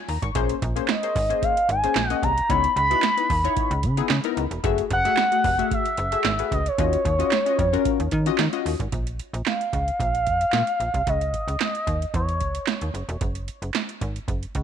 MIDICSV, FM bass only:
0, 0, Header, 1, 2, 480
1, 0, Start_track
1, 0, Key_signature, -5, "minor"
1, 0, Tempo, 535714
1, 316, Time_signature, 4, 2, 24, 8
1, 13111, End_track
2, 0, Start_track
2, 0, Title_t, "FM bass"
2, 0, Program_c, 0, 39
2, 77, Note_on_c, 0, 39, 84
2, 164, Note_off_c, 0, 39, 0
2, 200, Note_on_c, 0, 32, 90
2, 278, Note_off_c, 0, 32, 0
2, 315, Note_on_c, 0, 34, 99
2, 480, Note_off_c, 0, 34, 0
2, 557, Note_on_c, 0, 34, 106
2, 722, Note_off_c, 0, 34, 0
2, 1036, Note_on_c, 0, 32, 102
2, 1201, Note_off_c, 0, 32, 0
2, 1513, Note_on_c, 0, 32, 97
2, 1679, Note_off_c, 0, 32, 0
2, 1754, Note_on_c, 0, 34, 98
2, 1920, Note_off_c, 0, 34, 0
2, 1994, Note_on_c, 0, 36, 89
2, 2160, Note_off_c, 0, 36, 0
2, 2236, Note_on_c, 0, 37, 106
2, 2401, Note_off_c, 0, 37, 0
2, 2475, Note_on_c, 0, 37, 104
2, 2641, Note_off_c, 0, 37, 0
2, 2956, Note_on_c, 0, 39, 94
2, 3121, Note_off_c, 0, 39, 0
2, 3322, Note_on_c, 0, 37, 101
2, 3437, Note_on_c, 0, 49, 112
2, 3450, Note_off_c, 0, 37, 0
2, 3601, Note_off_c, 0, 49, 0
2, 3675, Note_on_c, 0, 49, 104
2, 3763, Note_off_c, 0, 49, 0
2, 3916, Note_on_c, 0, 37, 87
2, 4003, Note_off_c, 0, 37, 0
2, 4040, Note_on_c, 0, 28, 88
2, 4119, Note_off_c, 0, 28, 0
2, 4155, Note_on_c, 0, 30, 108
2, 4320, Note_off_c, 0, 30, 0
2, 4395, Note_on_c, 0, 30, 110
2, 4560, Note_off_c, 0, 30, 0
2, 4876, Note_on_c, 0, 29, 107
2, 5041, Note_off_c, 0, 29, 0
2, 5358, Note_on_c, 0, 30, 98
2, 5523, Note_off_c, 0, 30, 0
2, 5597, Note_on_c, 0, 32, 99
2, 5762, Note_off_c, 0, 32, 0
2, 5838, Note_on_c, 0, 37, 87
2, 6002, Note_off_c, 0, 37, 0
2, 6079, Note_on_c, 0, 39, 109
2, 6243, Note_off_c, 0, 39, 0
2, 6317, Note_on_c, 0, 39, 101
2, 6482, Note_off_c, 0, 39, 0
2, 6798, Note_on_c, 0, 41, 101
2, 6962, Note_off_c, 0, 41, 0
2, 7166, Note_on_c, 0, 39, 83
2, 7243, Note_off_c, 0, 39, 0
2, 7276, Note_on_c, 0, 51, 109
2, 7441, Note_off_c, 0, 51, 0
2, 7516, Note_on_c, 0, 51, 105
2, 7603, Note_off_c, 0, 51, 0
2, 7756, Note_on_c, 0, 39, 86
2, 7844, Note_off_c, 0, 39, 0
2, 7882, Note_on_c, 0, 32, 90
2, 7960, Note_off_c, 0, 32, 0
2, 7997, Note_on_c, 0, 34, 86
2, 8249, Note_off_c, 0, 34, 0
2, 8364, Note_on_c, 0, 34, 93
2, 8441, Note_off_c, 0, 34, 0
2, 8718, Note_on_c, 0, 37, 92
2, 8883, Note_off_c, 0, 37, 0
2, 8957, Note_on_c, 0, 34, 94
2, 9198, Note_on_c, 0, 41, 92
2, 9212, Note_off_c, 0, 34, 0
2, 9363, Note_off_c, 0, 41, 0
2, 9435, Note_on_c, 0, 46, 106
2, 9523, Note_off_c, 0, 46, 0
2, 9676, Note_on_c, 0, 34, 84
2, 9764, Note_off_c, 0, 34, 0
2, 9802, Note_on_c, 0, 36, 94
2, 9880, Note_off_c, 0, 36, 0
2, 9918, Note_on_c, 0, 37, 108
2, 10170, Note_off_c, 0, 37, 0
2, 10282, Note_on_c, 0, 37, 88
2, 10360, Note_off_c, 0, 37, 0
2, 10636, Note_on_c, 0, 39, 93
2, 10801, Note_off_c, 0, 39, 0
2, 10876, Note_on_c, 0, 40, 98
2, 11118, Note_on_c, 0, 37, 95
2, 11131, Note_off_c, 0, 40, 0
2, 11282, Note_off_c, 0, 37, 0
2, 11484, Note_on_c, 0, 39, 75
2, 11562, Note_off_c, 0, 39, 0
2, 11594, Note_on_c, 0, 30, 83
2, 11682, Note_off_c, 0, 30, 0
2, 11725, Note_on_c, 0, 28, 103
2, 11802, Note_off_c, 0, 28, 0
2, 11836, Note_on_c, 0, 30, 97
2, 12089, Note_off_c, 0, 30, 0
2, 12204, Note_on_c, 0, 30, 84
2, 12281, Note_off_c, 0, 30, 0
2, 12556, Note_on_c, 0, 32, 96
2, 12721, Note_off_c, 0, 32, 0
2, 12794, Note_on_c, 0, 30, 93
2, 12959, Note_off_c, 0, 30, 0
2, 13038, Note_on_c, 0, 37, 94
2, 13111, Note_off_c, 0, 37, 0
2, 13111, End_track
0, 0, End_of_file